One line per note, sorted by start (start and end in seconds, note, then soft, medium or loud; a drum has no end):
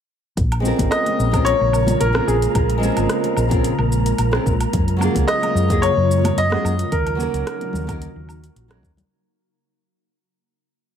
0.36 0.71 A#1 medium
0.36 4.69 C#3 medium
0.36 6.87 G#3 medium
0.36 4.69 A#3 medium
0.36 4.69 F4 medium
0.36 4.69 A#4 medium
0.36 9.11 A#4 medium
0.36 9.11 A#5 medium
0.36 kick loud
0.36 closed hi-hat medium
0.36 shaker soft
0.52 closed hi-hat soft
0.52 low woodblock medium
0.60 1.28 G#3 medium
0.60 1.29 C4 medium
0.60 1.30 C#4 medium
0.65 1.31 F4 medium
0.65 1.32 A#4 medium
0.65 shaker medium
0.79 0.87 G#1 medium
0.79 kick medium
0.79 closed hi-hat soft
0.79 high conga medium
0.79 shaker soft
0.91 1.48 D#5 medium
0.91 cross-stick medium
0.91 closed hi-hat medium
0.91 low woodblock medium
0.91 shaker soft
1.06 closed hi-hat soft
1.06 high conga medium
1.19 1.52 A#1 medium
1.19 shaker medium
1.31 1.53 G#3 medium
1.31 1.54 C4 medium
1.31 1.54 C#4 medium
1.31 1.55 F4 medium
1.31 1.55 A#4 medium
1.31 kick loud
1.31 closed hi-hat soft
1.31 low woodblock medium
1.31 shaker soft
1.45 2.02 C#5 loud
1.45 closed hi-hat medium
1.45 shaker soft
1.61 1.93 A#1 medium
1.73 low woodblock medium
1.73 shaker medium
1.87 closed hi-hat soft
1.87 high conga medium
1.87 low conga medium
1.87 shaker soft
2.00 2.19 A#1 medium
2.00 2.26 A#4 medium
2.00 closed hi-hat medium
2.00 shaker soft
2.13 2.35 G#3 medium
2.13 2.35 C4 medium
2.13 2.36 C#4 medium
2.13 2.36 F4 medium
2.13 2.37 A#4 medium
2.13 cross-stick medium
2.13 high conga medium
2.13 low woodblock medium
2.27 2.46 A#1 medium
2.27 3.33 G#4 medium
2.27 shaker medium
2.42 closed hi-hat soft
2.42 shaker soft
2.55 2.88 A#1 medium
2.55 kick loud
2.55 closed hi-hat medium
2.55 low woodblock medium
2.55 shaker soft
2.70 closed hi-hat soft
2.78 3.46 G#3 medium
2.78 3.47 C4 medium
2.78 3.48 C#4 medium
2.83 3.48 F4 medium
2.83 3.49 A#4 medium
2.83 shaker medium
2.97 3.05 G#1 medium
2.97 closed hi-hat soft
2.97 low woodblock medium
2.97 shaker soft
3.09 cross-stick medium
3.09 closed hi-hat medium
3.09 shaker soft
3.24 closed hi-hat soft
3.24 high conga medium
3.37 3.70 A#1 medium
3.37 low woodblock medium
3.37 shaker medium
3.49 3.71 G#3 medium
3.49 3.72 C4 medium
3.49 3.72 C#4 medium
3.49 3.73 F4 medium
3.49 3.73 A#4 medium
3.49 kick loud
3.49 closed hi-hat soft
3.49 shaker soft
3.64 closed hi-hat medium
3.64 shaker soft
3.79 4.11 A#1 loud
3.79 low woodblock medium
3.92 shaker medium
4.06 closed hi-hat soft
4.06 shaker soft
4.18 4.37 A#1 medium
4.18 closed hi-hat medium
4.18 low woodblock medium
4.18 shaker soft
4.31 4.53 G#3 medium
4.31 4.54 C4 medium
4.31 4.54 C#4 medium
4.31 4.54 F4 medium
4.31 4.55 A#4 medium
4.31 cross-stick medium
4.46 4.64 A#1 loud
4.46 kick loud
4.46 shaker medium
4.61 closed hi-hat soft
4.61 low woodblock medium
4.61 shaker soft
4.73 5.07 F#2 medium
4.73 9.06 C#3 medium
4.73 6.90 F#3 medium
4.73 9.06 A#3 medium
4.73 6.90 F4 medium
4.73 kick loud
4.73 closed hi-hat medium
4.73 shaker soft
4.88 closed hi-hat soft
4.97 5.64 F#3 medium
4.97 5.65 A#3 medium
4.97 5.66 C#4 medium
5.01 5.67 F4 medium
5.01 5.68 G#4 medium
5.01 low woodblock medium
5.01 shaker medium
5.15 5.24 C#2 medium
5.15 kick medium
5.15 closed hi-hat soft
5.15 high conga medium
5.15 shaker soft
5.28 5.84 D#5 loud
5.28 cross-stick medium
5.28 closed hi-hat soft
5.28 shaker soft
5.42 closed hi-hat soft
5.42 high conga medium
5.42 low woodblock medium
5.55 5.88 F#2 medium
5.55 shaker medium
5.68 5.90 F#3 medium
5.68 5.91 A#3 medium
5.68 5.91 C#4 medium
5.68 5.91 F4 medium
5.68 5.92 G#4 medium
5.68 kick loud
5.68 closed hi-hat soft
5.68 shaker soft
5.82 6.38 C#5 loud
5.82 closed hi-hat medium
5.82 low woodblock medium
5.82 shaker soft
5.97 6.30 F#2 loud
6.11 shaker medium
6.24 closed hi-hat soft
6.24 high conga medium
6.24 low conga medium
6.24 low woodblock medium
6.24 shaker soft
6.37 6.55 F#2 medium
6.37 6.94 D#5 loud
6.37 closed hi-hat medium
6.37 shaker soft
6.50 6.72 F#3 medium
6.50 6.72 A#3 medium
6.50 6.73 C#4 medium
6.50 6.73 F4 medium
6.50 cross-stick medium
6.50 high conga medium
6.54 6.74 G#4 medium
6.64 6.82 F#2 medium
6.64 low woodblock medium
6.64 shaker medium
6.79 closed hi-hat soft
6.79 shaker soft
6.91 7.25 D#2 medium
6.91 9.07 F#3 medium
6.91 9.07 D#4 medium
6.91 9.07 F#4 medium
6.91 8.51 A#4 medium
6.91 kick loud
6.91 closed hi-hat medium
6.91 shaker soft
7.07 closed hi-hat soft
7.07 low woodblock medium
7.15 7.83 F#3 medium
7.15 7.84 A#3 medium
7.15 7.84 C#4 medium
7.20 7.85 D#4 medium
7.20 7.86 A#4 medium
7.20 shaker medium
7.33 7.42 C#2 medium
7.33 closed hi-hat soft
7.33 shaker soft
7.47 cross-stick medium
7.47 closed hi-hat soft
7.47 low woodblock medium
7.47 shaker soft
7.61 closed hi-hat soft
7.61 high conga medium
7.73 8.07 D#2 medium
7.73 low conga medium
7.73 shaker medium
7.87 8.08 F#3 medium
7.87 8.09 A#3 medium
7.87 8.09 C#4 medium
7.87 8.10 D#4 medium
7.87 8.10 A#4 medium
7.87 kick loud
7.87 closed hi-hat soft
7.87 low woodblock medium
7.87 shaker soft
8.02 closed hi-hat medium
8.02 shaker soft
8.16 8.48 D#2 medium
8.29 low woodblock medium
8.29 shaker medium
8.44 closed hi-hat soft
8.44 shaker soft
8.56 8.83 A#1 medium
8.56 closed hi-hat medium
8.56 shaker soft
8.68 8.90 F#3 medium
8.68 8.90 A#3 medium
8.68 8.91 C#4 medium
8.68 8.91 D#4 medium
8.68 8.92 A#4 medium
8.68 cross-stick medium
8.68 closed hi-hat soft
8.68 low woodblock medium
8.83 9.01 D#2 medium
8.83 kick loud
8.83 shaker medium
8.97 closed hi-hat soft
8.97 low conga medium
8.97 shaker soft